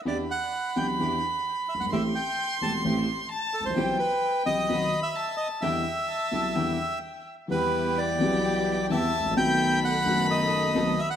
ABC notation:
X:1
M:4/4
L:1/16
Q:1/4=129
K:Em
V:1 name="Violin"
b16 | c'12 a4 | g8 b4 a4 | g4 a4 g6 z2 |
g12 a4 | b16 |]
V:2 name="Bandoneon"
d2 f4 g2 z6 e f | e2 g4 a2 z6 A c- | c2 B4 ^d4- d e3 d2 | e12 z4 |
B4 d8 e4 | g4 f4 ^d6 e f |]
V:3 name="String section"
[DEG]2 z4 [DEG]2 [DEG]2 z6 | [A,CG]2 z4 [A,CG]2 [A,CG]2 z6 | [B,EG]2 z4 [B,EG]2 [B,^DF]2 z6 | [DEG]2 z4 [DEG]2 [DEG]2 z6 |
[B,EG]6 [B,EG]6 [B,EG]2 z2 | [B,^DA]6 [B,DA]6 [B,DA]2 z2 |]
V:4 name="Grand piano" clef=bass
[E,,E,B,DG]2 z4 [B,,,B,,E,B,DG]2 [E,,E,B,DG]2 z4 z/2 F,,,/2 G,,,/2 ^G,,,/2 | [A,,,A,,E,A,CG]2 z4 [E,,,E,,E,A,CG]2 [A,,,A,,E,A,CG]2 z4 z/2 ^G,,,/2 A,,,/2 ^A,,,/2 | [B,,,B,,E,G,B,G]2 z4 [B,,,B,,E,G,B,G]2 [B,,,B,,^D,F,B,F]2 z6 | [E,,D,E,G,B,E]2 z4 [B,,,B,,D,G,B,E]2 [E,,D,E,G,B,E]2 z6 |
[E,,E,G,B,G]6 [B,,,B,,E,G,B,G]6 [E,,E,G,B,G]2 z/2 ^G,,,/2 A,,,/2 ^A,,,/2 | [B,,,B,,^D,F,A,B,]6 [F,,,F,,D,A,B,F]6 [B,,,B,,D,A,B,F]2 z2 |]